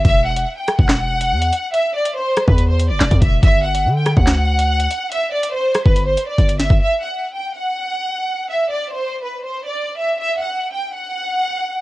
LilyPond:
<<
  \new Staff \with { instrumentName = "Violin section" } { \time 4/4 \key g \major \tempo 4 = 142 e''8 fis''8. g''8 fis''2~ fis''16 | e''8 d''8 c''8. b'8 c''8 d''8. e''8 | e''8 fis''8. g''8 fis''2~ fis''16 | e''8 d''8 c''8. b'8 c''8 d''8. e''8 |
e''8 fis''8. g''8 fis''2~ fis''16 | e''8 d''8 c''8. b'8 c''8 d''8. e''8 | e''8 fis''8. g''8 fis''2~ fis''16 | }
  \new Staff \with { instrumentName = "808-style bass" } { \clef bass \time 4/4 \key g \major e,,4 r8. e,,4~ e,,16 e,8 r8 | r4. r16 e,4 fis,,16 e,,16 e,16 e,,8 | g,,4 d8. d,4.~ d,16 r8 | r4. r16 g,,8. r8 g,,8. g,,16 |
r1 | r1 | r1 | }
  \new DrumStaff \with { instrumentName = "Drums" } \drummode { \time 4/4 <hh bd>8. hh16 r8 <hh ss>16 bd16 <hc hh sn>8. hh16 r16 hh16 hh8 | hh8. hh16 r8 <hh ss>16 bd16 hh8 hh8 <hc hh sn>16 <hh bd>16 <hh bd>8 | <hh bd>8. hh16 r8 <hh ss>16 bd16 <hc hh sn>8. hh16 r16 hh16 hh8 | hh8. hh16 r8 <hh ss>16 bd16 hh8 hh8 <hh bd>16 hh16 <hh sn>16 bd16 |
r4 r4 r4 r4 | r4 r4 r4 r4 | r4 r4 r4 r4 | }
>>